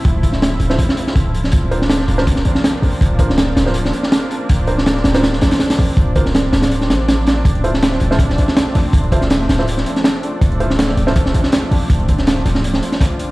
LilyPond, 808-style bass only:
\new Staff \with { instrumentName = "808-style bass" } { \clef bass \time 4/4 \key d \minor \tempo 4 = 162 d,,4. d,,8 a,,8 r8 d,,4 | d,,4. d,,4 a,,8 r8 a,,8 | d,,4. d,,4 r4. | d,,4. d,,4 a,,8 r8 a,,8 |
d,,4. d,,4 a,,4. | d,,4. d,,4 a,,8 r8 a,,8 | d,,4. d,,4 r4. | d,,4. d,,4 a,,8 r8 a,,8 |
d,,4. d,,4 r4. | }